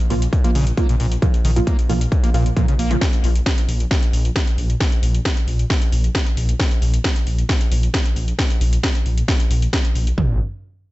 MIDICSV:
0, 0, Header, 1, 5, 480
1, 0, Start_track
1, 0, Tempo, 447761
1, 1311, Time_signature, 4, 2, 24, 8
1, 11701, End_track
2, 0, Start_track
2, 0, Title_t, "Synth stab"
2, 0, Program_c, 0, 62
2, 110, Note_on_c, 0, 53, 84
2, 110, Note_on_c, 0, 58, 76
2, 111, Note_on_c, 0, 65, 88
2, 201, Note_off_c, 0, 53, 0
2, 201, Note_off_c, 0, 58, 0
2, 201, Note_off_c, 0, 65, 0
2, 475, Note_on_c, 0, 58, 69
2, 475, Note_on_c, 0, 65, 87
2, 476, Note_on_c, 0, 53, 74
2, 610, Note_off_c, 0, 53, 0
2, 610, Note_off_c, 0, 58, 0
2, 610, Note_off_c, 0, 65, 0
2, 831, Note_on_c, 0, 53, 78
2, 831, Note_on_c, 0, 58, 71
2, 831, Note_on_c, 0, 65, 88
2, 921, Note_off_c, 0, 53, 0
2, 921, Note_off_c, 0, 58, 0
2, 921, Note_off_c, 0, 65, 0
2, 1311, Note_on_c, 0, 53, 89
2, 1311, Note_on_c, 0, 58, 84
2, 1311, Note_on_c, 0, 65, 96
2, 1401, Note_off_c, 0, 53, 0
2, 1401, Note_off_c, 0, 58, 0
2, 1401, Note_off_c, 0, 65, 0
2, 1676, Note_on_c, 0, 53, 82
2, 1676, Note_on_c, 0, 58, 76
2, 1676, Note_on_c, 0, 65, 89
2, 2003, Note_off_c, 0, 53, 0
2, 2003, Note_off_c, 0, 58, 0
2, 2003, Note_off_c, 0, 65, 0
2, 2031, Note_on_c, 0, 53, 84
2, 2031, Note_on_c, 0, 58, 78
2, 2031, Note_on_c, 0, 65, 93
2, 2121, Note_off_c, 0, 53, 0
2, 2121, Note_off_c, 0, 58, 0
2, 2121, Note_off_c, 0, 65, 0
2, 2396, Note_on_c, 0, 53, 77
2, 2396, Note_on_c, 0, 58, 71
2, 2396, Note_on_c, 0, 65, 85
2, 2488, Note_off_c, 0, 53, 0
2, 2488, Note_off_c, 0, 58, 0
2, 2488, Note_off_c, 0, 65, 0
2, 2511, Note_on_c, 0, 53, 91
2, 2511, Note_on_c, 0, 58, 85
2, 2511, Note_on_c, 0, 65, 107
2, 2654, Note_off_c, 0, 53, 0
2, 2654, Note_off_c, 0, 58, 0
2, 2654, Note_off_c, 0, 65, 0
2, 2751, Note_on_c, 0, 53, 89
2, 2751, Note_on_c, 0, 58, 82
2, 2751, Note_on_c, 0, 65, 102
2, 2841, Note_off_c, 0, 53, 0
2, 2841, Note_off_c, 0, 58, 0
2, 2841, Note_off_c, 0, 65, 0
2, 3115, Note_on_c, 0, 53, 74
2, 3115, Note_on_c, 0, 58, 68
2, 3115, Note_on_c, 0, 65, 84
2, 3199, Note_off_c, 0, 53, 0
2, 3199, Note_off_c, 0, 58, 0
2, 3199, Note_off_c, 0, 65, 0
2, 11701, End_track
3, 0, Start_track
3, 0, Title_t, "Acid bass"
3, 0, Program_c, 1, 38
3, 110, Note_on_c, 1, 46, 83
3, 152, Note_off_c, 1, 46, 0
3, 475, Note_on_c, 1, 58, 100
3, 539, Note_off_c, 1, 58, 0
3, 590, Note_on_c, 1, 49, 103
3, 693, Note_off_c, 1, 49, 0
3, 830, Note_on_c, 1, 58, 85
3, 934, Note_off_c, 1, 58, 0
3, 955, Note_on_c, 1, 46, 107
3, 1019, Note_off_c, 1, 46, 0
3, 1071, Note_on_c, 1, 46, 80
3, 1140, Note_off_c, 1, 46, 0
3, 1311, Note_on_c, 1, 46, 99
3, 1352, Note_off_c, 1, 46, 0
3, 1551, Note_on_c, 1, 51, 76
3, 1620, Note_off_c, 1, 51, 0
3, 1676, Note_on_c, 1, 44, 74
3, 1714, Note_off_c, 1, 44, 0
3, 1792, Note_on_c, 1, 58, 83
3, 1894, Note_off_c, 1, 58, 0
3, 2032, Note_on_c, 1, 46, 81
3, 2072, Note_off_c, 1, 46, 0
3, 2397, Note_on_c, 1, 58, 105
3, 2459, Note_off_c, 1, 58, 0
3, 2512, Note_on_c, 1, 46, 74
3, 2615, Note_off_c, 1, 46, 0
3, 2752, Note_on_c, 1, 46, 84
3, 2854, Note_off_c, 1, 46, 0
3, 2877, Note_on_c, 1, 49, 81
3, 2940, Note_off_c, 1, 49, 0
3, 2992, Note_on_c, 1, 58, 100
3, 3117, Note_on_c, 1, 46, 77
3, 3133, Note_off_c, 1, 58, 0
3, 3180, Note_off_c, 1, 46, 0
3, 11701, End_track
4, 0, Start_track
4, 0, Title_t, "Detuned saw bass"
4, 0, Program_c, 2, 39
4, 111, Note_on_c, 2, 34, 90
4, 292, Note_off_c, 2, 34, 0
4, 591, Note_on_c, 2, 34, 110
4, 772, Note_off_c, 2, 34, 0
4, 1071, Note_on_c, 2, 34, 91
4, 1252, Note_off_c, 2, 34, 0
4, 1552, Note_on_c, 2, 34, 99
4, 1733, Note_off_c, 2, 34, 0
4, 2032, Note_on_c, 2, 34, 88
4, 2213, Note_off_c, 2, 34, 0
4, 2512, Note_on_c, 2, 34, 108
4, 2692, Note_off_c, 2, 34, 0
4, 2991, Note_on_c, 2, 34, 90
4, 3172, Note_off_c, 2, 34, 0
4, 3471, Note_on_c, 2, 34, 98
4, 3652, Note_off_c, 2, 34, 0
4, 3951, Note_on_c, 2, 34, 90
4, 4132, Note_off_c, 2, 34, 0
4, 4431, Note_on_c, 2, 34, 106
4, 4612, Note_off_c, 2, 34, 0
4, 4912, Note_on_c, 2, 34, 91
4, 5092, Note_off_c, 2, 34, 0
4, 5391, Note_on_c, 2, 34, 101
4, 5572, Note_off_c, 2, 34, 0
4, 5871, Note_on_c, 2, 34, 92
4, 6052, Note_off_c, 2, 34, 0
4, 6351, Note_on_c, 2, 34, 107
4, 6532, Note_off_c, 2, 34, 0
4, 6831, Note_on_c, 2, 34, 91
4, 7012, Note_off_c, 2, 34, 0
4, 7311, Note_on_c, 2, 34, 100
4, 7492, Note_off_c, 2, 34, 0
4, 7791, Note_on_c, 2, 34, 92
4, 7972, Note_off_c, 2, 34, 0
4, 8271, Note_on_c, 2, 34, 105
4, 8452, Note_off_c, 2, 34, 0
4, 8750, Note_on_c, 2, 34, 91
4, 8932, Note_off_c, 2, 34, 0
4, 9231, Note_on_c, 2, 34, 100
4, 9412, Note_off_c, 2, 34, 0
4, 9711, Note_on_c, 2, 34, 88
4, 9892, Note_off_c, 2, 34, 0
4, 10191, Note_on_c, 2, 34, 85
4, 10372, Note_off_c, 2, 34, 0
4, 10672, Note_on_c, 2, 34, 103
4, 10853, Note_off_c, 2, 34, 0
4, 10911, Note_on_c, 2, 34, 97
4, 11134, Note_off_c, 2, 34, 0
4, 11701, End_track
5, 0, Start_track
5, 0, Title_t, "Drums"
5, 112, Note_on_c, 9, 46, 98
5, 219, Note_off_c, 9, 46, 0
5, 237, Note_on_c, 9, 42, 69
5, 344, Note_off_c, 9, 42, 0
5, 350, Note_on_c, 9, 36, 127
5, 352, Note_on_c, 9, 42, 67
5, 458, Note_off_c, 9, 36, 0
5, 459, Note_off_c, 9, 42, 0
5, 476, Note_on_c, 9, 42, 68
5, 583, Note_off_c, 9, 42, 0
5, 592, Note_on_c, 9, 46, 116
5, 699, Note_off_c, 9, 46, 0
5, 716, Note_on_c, 9, 42, 66
5, 823, Note_off_c, 9, 42, 0
5, 830, Note_on_c, 9, 36, 123
5, 831, Note_on_c, 9, 42, 70
5, 938, Note_off_c, 9, 36, 0
5, 939, Note_off_c, 9, 42, 0
5, 957, Note_on_c, 9, 42, 69
5, 1064, Note_off_c, 9, 42, 0
5, 1071, Note_on_c, 9, 46, 98
5, 1178, Note_off_c, 9, 46, 0
5, 1197, Note_on_c, 9, 42, 70
5, 1304, Note_off_c, 9, 42, 0
5, 1311, Note_on_c, 9, 36, 123
5, 1311, Note_on_c, 9, 42, 65
5, 1418, Note_off_c, 9, 36, 0
5, 1418, Note_off_c, 9, 42, 0
5, 1437, Note_on_c, 9, 42, 65
5, 1544, Note_off_c, 9, 42, 0
5, 1552, Note_on_c, 9, 46, 103
5, 1659, Note_off_c, 9, 46, 0
5, 1677, Note_on_c, 9, 42, 68
5, 1784, Note_off_c, 9, 42, 0
5, 1791, Note_on_c, 9, 36, 120
5, 1792, Note_on_c, 9, 42, 68
5, 1898, Note_off_c, 9, 36, 0
5, 1899, Note_off_c, 9, 42, 0
5, 1917, Note_on_c, 9, 42, 67
5, 2024, Note_off_c, 9, 42, 0
5, 2032, Note_on_c, 9, 46, 93
5, 2139, Note_off_c, 9, 46, 0
5, 2157, Note_on_c, 9, 42, 67
5, 2265, Note_off_c, 9, 42, 0
5, 2271, Note_on_c, 9, 36, 127
5, 2273, Note_on_c, 9, 42, 59
5, 2378, Note_off_c, 9, 36, 0
5, 2380, Note_off_c, 9, 42, 0
5, 2398, Note_on_c, 9, 42, 65
5, 2505, Note_off_c, 9, 42, 0
5, 2512, Note_on_c, 9, 46, 117
5, 2619, Note_off_c, 9, 46, 0
5, 2638, Note_on_c, 9, 42, 66
5, 2745, Note_off_c, 9, 42, 0
5, 2751, Note_on_c, 9, 36, 125
5, 2753, Note_on_c, 9, 42, 64
5, 2858, Note_off_c, 9, 36, 0
5, 2860, Note_off_c, 9, 42, 0
5, 2877, Note_on_c, 9, 42, 65
5, 2984, Note_off_c, 9, 42, 0
5, 2992, Note_on_c, 9, 46, 97
5, 3099, Note_off_c, 9, 46, 0
5, 3117, Note_on_c, 9, 42, 65
5, 3224, Note_off_c, 9, 42, 0
5, 3231, Note_on_c, 9, 36, 119
5, 3232, Note_on_c, 9, 38, 112
5, 3232, Note_on_c, 9, 42, 64
5, 3338, Note_off_c, 9, 36, 0
5, 3340, Note_off_c, 9, 38, 0
5, 3340, Note_off_c, 9, 42, 0
5, 3357, Note_on_c, 9, 42, 63
5, 3464, Note_off_c, 9, 42, 0
5, 3472, Note_on_c, 9, 46, 99
5, 3579, Note_off_c, 9, 46, 0
5, 3597, Note_on_c, 9, 42, 68
5, 3704, Note_off_c, 9, 42, 0
5, 3711, Note_on_c, 9, 36, 117
5, 3712, Note_on_c, 9, 38, 115
5, 3712, Note_on_c, 9, 42, 65
5, 3818, Note_off_c, 9, 36, 0
5, 3819, Note_off_c, 9, 38, 0
5, 3819, Note_off_c, 9, 42, 0
5, 3837, Note_on_c, 9, 42, 67
5, 3944, Note_off_c, 9, 42, 0
5, 3952, Note_on_c, 9, 46, 90
5, 4059, Note_off_c, 9, 46, 0
5, 4077, Note_on_c, 9, 42, 62
5, 4185, Note_off_c, 9, 42, 0
5, 4191, Note_on_c, 9, 36, 126
5, 4192, Note_on_c, 9, 38, 110
5, 4192, Note_on_c, 9, 42, 60
5, 4298, Note_off_c, 9, 36, 0
5, 4299, Note_off_c, 9, 38, 0
5, 4299, Note_off_c, 9, 42, 0
5, 4317, Note_on_c, 9, 42, 65
5, 4424, Note_off_c, 9, 42, 0
5, 4432, Note_on_c, 9, 46, 110
5, 4539, Note_off_c, 9, 46, 0
5, 4557, Note_on_c, 9, 42, 65
5, 4664, Note_off_c, 9, 42, 0
5, 4671, Note_on_c, 9, 36, 121
5, 4671, Note_on_c, 9, 38, 111
5, 4671, Note_on_c, 9, 42, 63
5, 4778, Note_off_c, 9, 36, 0
5, 4779, Note_off_c, 9, 38, 0
5, 4779, Note_off_c, 9, 42, 0
5, 4797, Note_on_c, 9, 42, 60
5, 4904, Note_off_c, 9, 42, 0
5, 4911, Note_on_c, 9, 46, 96
5, 5018, Note_off_c, 9, 46, 0
5, 5036, Note_on_c, 9, 42, 63
5, 5144, Note_off_c, 9, 42, 0
5, 5151, Note_on_c, 9, 36, 112
5, 5151, Note_on_c, 9, 38, 109
5, 5151, Note_on_c, 9, 42, 61
5, 5258, Note_off_c, 9, 36, 0
5, 5258, Note_off_c, 9, 38, 0
5, 5258, Note_off_c, 9, 42, 0
5, 5276, Note_on_c, 9, 42, 62
5, 5383, Note_off_c, 9, 42, 0
5, 5391, Note_on_c, 9, 46, 99
5, 5498, Note_off_c, 9, 46, 0
5, 5516, Note_on_c, 9, 42, 64
5, 5624, Note_off_c, 9, 42, 0
5, 5631, Note_on_c, 9, 36, 110
5, 5631, Note_on_c, 9, 38, 114
5, 5631, Note_on_c, 9, 42, 65
5, 5738, Note_off_c, 9, 36, 0
5, 5738, Note_off_c, 9, 38, 0
5, 5738, Note_off_c, 9, 42, 0
5, 5756, Note_on_c, 9, 42, 62
5, 5864, Note_off_c, 9, 42, 0
5, 5871, Note_on_c, 9, 46, 91
5, 5979, Note_off_c, 9, 46, 0
5, 5996, Note_on_c, 9, 42, 61
5, 6104, Note_off_c, 9, 42, 0
5, 6111, Note_on_c, 9, 36, 114
5, 6112, Note_on_c, 9, 38, 116
5, 6112, Note_on_c, 9, 42, 63
5, 6218, Note_off_c, 9, 36, 0
5, 6219, Note_off_c, 9, 38, 0
5, 6219, Note_off_c, 9, 42, 0
5, 6236, Note_on_c, 9, 42, 67
5, 6343, Note_off_c, 9, 42, 0
5, 6351, Note_on_c, 9, 46, 106
5, 6458, Note_off_c, 9, 46, 0
5, 6477, Note_on_c, 9, 42, 63
5, 6584, Note_off_c, 9, 42, 0
5, 6591, Note_on_c, 9, 36, 113
5, 6591, Note_on_c, 9, 38, 118
5, 6591, Note_on_c, 9, 42, 63
5, 6698, Note_off_c, 9, 36, 0
5, 6699, Note_off_c, 9, 38, 0
5, 6699, Note_off_c, 9, 42, 0
5, 6717, Note_on_c, 9, 42, 64
5, 6824, Note_off_c, 9, 42, 0
5, 6831, Note_on_c, 9, 46, 91
5, 6938, Note_off_c, 9, 46, 0
5, 6956, Note_on_c, 9, 42, 67
5, 7064, Note_off_c, 9, 42, 0
5, 7071, Note_on_c, 9, 36, 114
5, 7071, Note_on_c, 9, 38, 117
5, 7071, Note_on_c, 9, 42, 61
5, 7178, Note_off_c, 9, 36, 0
5, 7178, Note_off_c, 9, 38, 0
5, 7178, Note_off_c, 9, 42, 0
5, 7196, Note_on_c, 9, 42, 65
5, 7304, Note_off_c, 9, 42, 0
5, 7311, Note_on_c, 9, 46, 97
5, 7418, Note_off_c, 9, 46, 0
5, 7436, Note_on_c, 9, 42, 68
5, 7543, Note_off_c, 9, 42, 0
5, 7551, Note_on_c, 9, 36, 110
5, 7551, Note_on_c, 9, 38, 125
5, 7551, Note_on_c, 9, 42, 68
5, 7658, Note_off_c, 9, 36, 0
5, 7658, Note_off_c, 9, 38, 0
5, 7658, Note_off_c, 9, 42, 0
5, 7676, Note_on_c, 9, 42, 68
5, 7783, Note_off_c, 9, 42, 0
5, 7791, Note_on_c, 9, 46, 90
5, 7898, Note_off_c, 9, 46, 0
5, 7916, Note_on_c, 9, 42, 61
5, 8024, Note_off_c, 9, 42, 0
5, 8030, Note_on_c, 9, 36, 113
5, 8031, Note_on_c, 9, 38, 115
5, 8031, Note_on_c, 9, 42, 66
5, 8138, Note_off_c, 9, 36, 0
5, 8139, Note_off_c, 9, 38, 0
5, 8139, Note_off_c, 9, 42, 0
5, 8157, Note_on_c, 9, 42, 64
5, 8264, Note_off_c, 9, 42, 0
5, 8271, Note_on_c, 9, 46, 104
5, 8379, Note_off_c, 9, 46, 0
5, 8396, Note_on_c, 9, 42, 64
5, 8503, Note_off_c, 9, 42, 0
5, 8510, Note_on_c, 9, 36, 117
5, 8511, Note_on_c, 9, 38, 121
5, 8511, Note_on_c, 9, 42, 66
5, 8618, Note_off_c, 9, 36, 0
5, 8618, Note_off_c, 9, 38, 0
5, 8618, Note_off_c, 9, 42, 0
5, 8636, Note_on_c, 9, 42, 65
5, 8743, Note_off_c, 9, 42, 0
5, 8751, Note_on_c, 9, 46, 91
5, 8858, Note_off_c, 9, 46, 0
5, 8876, Note_on_c, 9, 42, 65
5, 8983, Note_off_c, 9, 42, 0
5, 8990, Note_on_c, 9, 36, 107
5, 8991, Note_on_c, 9, 38, 124
5, 8991, Note_on_c, 9, 42, 65
5, 9098, Note_off_c, 9, 36, 0
5, 9098, Note_off_c, 9, 38, 0
5, 9098, Note_off_c, 9, 42, 0
5, 9116, Note_on_c, 9, 42, 68
5, 9223, Note_off_c, 9, 42, 0
5, 9231, Note_on_c, 9, 46, 97
5, 9338, Note_off_c, 9, 46, 0
5, 9356, Note_on_c, 9, 42, 69
5, 9464, Note_off_c, 9, 42, 0
5, 9470, Note_on_c, 9, 36, 107
5, 9471, Note_on_c, 9, 38, 127
5, 9471, Note_on_c, 9, 42, 68
5, 9578, Note_off_c, 9, 36, 0
5, 9579, Note_off_c, 9, 38, 0
5, 9579, Note_off_c, 9, 42, 0
5, 9596, Note_on_c, 9, 42, 64
5, 9704, Note_off_c, 9, 42, 0
5, 9711, Note_on_c, 9, 46, 85
5, 9818, Note_off_c, 9, 46, 0
5, 9837, Note_on_c, 9, 42, 65
5, 9944, Note_off_c, 9, 42, 0
5, 9951, Note_on_c, 9, 36, 116
5, 9952, Note_on_c, 9, 38, 121
5, 9952, Note_on_c, 9, 42, 65
5, 10058, Note_off_c, 9, 36, 0
5, 10059, Note_off_c, 9, 38, 0
5, 10059, Note_off_c, 9, 42, 0
5, 10076, Note_on_c, 9, 42, 66
5, 10184, Note_off_c, 9, 42, 0
5, 10191, Note_on_c, 9, 46, 101
5, 10298, Note_off_c, 9, 46, 0
5, 10317, Note_on_c, 9, 42, 68
5, 10424, Note_off_c, 9, 42, 0
5, 10431, Note_on_c, 9, 36, 114
5, 10432, Note_on_c, 9, 38, 125
5, 10432, Note_on_c, 9, 42, 66
5, 10538, Note_off_c, 9, 36, 0
5, 10539, Note_off_c, 9, 38, 0
5, 10539, Note_off_c, 9, 42, 0
5, 10557, Note_on_c, 9, 42, 66
5, 10664, Note_off_c, 9, 42, 0
5, 10671, Note_on_c, 9, 46, 91
5, 10778, Note_off_c, 9, 46, 0
5, 10797, Note_on_c, 9, 42, 70
5, 10904, Note_off_c, 9, 42, 0
5, 10911, Note_on_c, 9, 36, 101
5, 10911, Note_on_c, 9, 43, 97
5, 11018, Note_off_c, 9, 36, 0
5, 11018, Note_off_c, 9, 43, 0
5, 11701, End_track
0, 0, End_of_file